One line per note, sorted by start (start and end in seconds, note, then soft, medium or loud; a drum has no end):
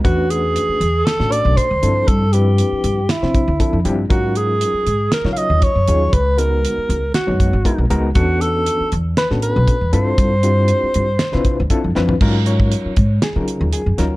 0.04 0.56 E2 medium
0.04 0.78 A3 medium
0.04 0.78 C#4 medium
0.04 0.78 D4 medium
0.04 0.78 F#4 medium
0.04 0.32 F#4 medium
0.04 0.78 B4 medium
0.04 kick medium
0.04 closed hi-hat medium
0.30 1.06 G#4 medium
0.30 closed hi-hat medium
0.56 closed hi-hat medium
0.69 muted upright bass stroke soft
0.80 1.01 E2 medium
0.80 closed hi-hat medium
1.05 1.33 A4 medium
1.05 snare loud
1.05 closed hi-hat medium
1.20 1.40 A2 medium
1.20 1.65 A3 medium
1.20 1.65 C#4 medium
1.20 1.65 D4 medium
1.20 1.65 F#4 medium
1.20 1.65 A4 medium
1.20 snare soft
1.32 1.58 D5 medium
1.32 closed hi-hat medium
1.45 1.54 B1 medium
1.57 2.09 C5 medium
1.57 kick medium
1.57 closed hi-hat medium
1.71 1.80 D2 medium
1.82 2.03 G2 medium
1.82 2.23 F3 medium
1.82 2.24 C4 medium
1.82 2.23 D4 medium
1.82 2.24 E4 medium
1.82 2.24 A4 medium
1.82 closed hi-hat medium
2.08 2.59 G2 medium
2.08 2.34 A4 medium
2.08 kick loud
2.08 closed hi-hat medium
2.33 2.98 F3 medium
2.33 2.98 C4 medium
2.33 2.99 D4 medium
2.33 2.98 E4 medium
2.33 3.12 G4 medium
2.33 2.98 B4 medium
2.33 closed hi-hat medium
2.58 closed hi-hat medium
2.72 muted upright bass stroke soft
2.84 3.04 G2 medium
2.84 closed hi-hat medium
3.09 3.86 E4 medium
3.09 snare loud
3.09 closed hi-hat medium
3.22 3.43 C3 medium
3.22 3.50 F3 medium
3.22 3.50 C4 medium
3.22 3.50 D4 medium
3.22 3.50 E4 medium
3.22 3.50 C5 medium
3.22 snare soft
3.35 kick medium
3.35 closed hi-hat medium
3.48 3.57 D2 medium
3.59 3.79 F3 medium
3.59 3.78 C4 medium
3.59 3.79 D4 medium
3.59 3.79 E4 medium
3.59 3.79 A4 medium
3.59 kick medium
3.59 closed hi-hat medium
3.73 3.83 F2 medium
3.85 4.05 G2 medium
3.85 4.04 F3 medium
3.85 4.04 C4 medium
3.85 4.04 D4 medium
3.85 4.04 E4 medium
3.85 4.04 G4 medium
3.85 closed hi-hat soft
4.10 4.62 G#2 medium
4.10 4.84 F#3 medium
4.10 4.84 C#4 medium
4.10 4.84 D#4 medium
4.10 4.84 F4 medium
4.10 4.38 F#4 medium
4.10 4.84 A#4 medium
4.10 kick medium
4.10 closed hi-hat medium
4.36 5.13 G#4 medium
4.36 closed hi-hat medium
4.61 closed hi-hat medium
4.74 muted upright bass stroke soft
4.86 5.07 G#2 medium
4.86 closed hi-hat medium
5.12 5.31 A#4 medium
5.12 snare loud
5.12 closed hi-hat medium
5.24 5.45 C#3 medium
5.24 5.71 F#3 medium
5.24 5.71 C#4 medium
5.24 5.71 D#4 medium
5.24 5.71 F4 medium
5.24 5.71 C#5 medium
5.24 snare soft
5.33 5.39 F5 medium
5.37 5.64 D#5 medium
5.37 closed hi-hat medium
5.50 5.60 D#2 medium
5.62 6.15 C#5 medium
5.62 kick medium
5.62 closed hi-hat medium
5.75 5.85 F#2 medium
5.88 6.08 D#2 medium
5.88 6.14 F#3 medium
5.88 6.13 C#4 medium
5.88 6.14 D#4 medium
5.88 6.14 F4 medium
5.88 6.14 G#4 medium
5.88 closed hi-hat medium
6.13 6.64 C#2 medium
6.13 6.40 B4 medium
6.13 kick medium
6.13 closed hi-hat medium
6.38 7.03 G#3 medium
6.38 7.03 B3 medium
6.38 7.03 D#4 medium
6.38 7.03 F#4 medium
6.38 7.03 A#4 medium
6.38 7.14 A#4 medium
6.38 closed hi-hat medium
6.65 closed hi-hat medium
6.77 muted upright bass stroke soft
6.89 7.10 C#2 medium
6.89 closed hi-hat medium
7.14 7.87 F#4 medium
7.14 snare loud
7.14 closed hi-hat medium
7.27 7.48 F#2 medium
7.27 7.55 G#3 medium
7.27 7.55 B3 medium
7.27 7.55 D#4 medium
7.27 7.55 F#4 medium
7.27 7.55 C#5 medium
7.40 kick medium
7.40 closed hi-hat medium
7.53 7.63 G#1 medium
7.65 7.84 G#3 medium
7.65 7.84 B3 medium
7.65 7.84 D#4 medium
7.65 7.84 F#4 medium
7.65 7.84 A#4 medium
7.65 kick medium
7.65 closed hi-hat medium
7.78 7.88 B1 medium
7.90 8.11 C#2 medium
7.90 8.09 G#3 medium
7.90 8.09 B3 medium
7.90 8.09 D#4 medium
7.90 8.09 F#4 medium
7.90 8.09 A#4 loud
7.90 closed hi-hat soft
8.15 8.67 E2 medium
8.15 8.89 B3 medium
8.15 8.89 C#4 medium
8.15 8.89 D4 medium
8.15 8.42 F#4 medium
8.15 8.89 F#4 medium
8.15 8.89 A4 medium
8.15 kick medium
8.15 closed hi-hat medium
8.41 8.92 A4 medium
8.41 closed hi-hat medium
8.66 closed hi-hat medium
8.80 muted upright bass stroke soft
8.92 9.12 E2 medium
8.92 closed hi-hat soft
9.17 9.29 B4 medium
9.17 snare loud
9.17 closed hi-hat medium
9.31 9.51 A2 medium
9.31 9.76 B3 medium
9.31 9.76 C#4 medium
9.31 9.76 D4 medium
9.31 9.76 F#4 medium
9.31 9.76 A4 medium
9.31 snare soft
9.42 9.90 B4 medium
9.42 closed hi-hat medium
9.56 9.66 B1 medium
9.68 kick medium
9.68 closed hi-hat medium
9.81 9.91 E2 medium
9.93 10.13 G2 medium
9.93 10.34 C4 medium
9.93 10.34 D4 medium
9.93 10.34 E4 medium
9.93 10.34 F4 medium
9.93 10.34 A4 medium
9.93 11.67 C5 medium
9.93 closed hi-hat medium
10.18 10.69 G2 medium
10.18 kick medium
10.18 closed hi-hat medium
10.43 11.08 C4 medium
10.43 11.08 D4 medium
10.43 11.08 E4 medium
10.43 11.08 F4 medium
10.43 11.08 G4 medium
10.43 closed hi-hat medium
10.68 closed hi-hat medium
10.83 muted upright bass stroke soft
10.94 11.15 G2 medium
10.94 closed hi-hat medium
11.19 snare loud
11.19 closed hi-hat medium
11.32 11.54 C3 medium
11.32 11.60 C4 medium
11.32 11.60 D4 medium
11.32 11.60 E4 medium
11.32 11.60 F4 medium
11.32 11.60 B4 medium
11.32 snare soft
11.45 kick medium
11.45 closed hi-hat medium
11.60 11.69 D2 medium
11.70 11.89 C4 medium
11.70 11.89 D4 medium
11.70 11.89 E4 medium
11.70 11.89 F4 medium
11.70 11.89 A4 medium
11.70 kick medium
11.70 closed hi-hat medium
11.84 11.94 F2 medium
11.95 12.16 F2 medium
11.95 12.14 C4 medium
11.95 12.14 D4 medium
11.95 12.14 E4 medium
11.95 12.14 F4 medium
11.95 12.15 B4 medium
11.95 snare soft
12.09 floor tom medium
12.21 12.72 G#2 medium
12.21 12.94 F#3 medium
12.21 12.95 C#4 medium
12.21 12.94 D#4 medium
12.21 12.95 F4 medium
12.21 12.95 A#4 medium
12.21 kick medium
12.21 crash medium
12.46 13.18 C#5 medium
12.46 closed hi-hat medium
12.60 kick medium
12.72 closed hi-hat medium
12.85 muted upright bass stroke soft
12.96 13.17 G#2 medium
12.96 kick medium
12.96 closed hi-hat medium
13.22 13.70 G#4 medium
13.22 snare loud
13.22 closed hi-hat medium
13.36 13.56 C#3 medium
13.36 13.81 F#3 medium
13.36 13.81 C#4 medium
13.36 13.81 D#4 medium
13.36 13.81 F4 medium
13.36 13.81 A#4 medium
13.48 closed hi-hat medium
13.61 13.70 D#2 medium
13.73 13.97 G#4 medium
13.73 closed hi-hat medium
13.86 13.96 F#2 medium
13.98 14.16 D2 medium
13.98 14.16 F#3 medium
13.98 14.16 C#4 medium
13.98 14.16 D#4 medium
13.98 14.16 F4 medium
13.98 14.16 A#4 medium
13.98 snare soft
13.98 closed hi-hat medium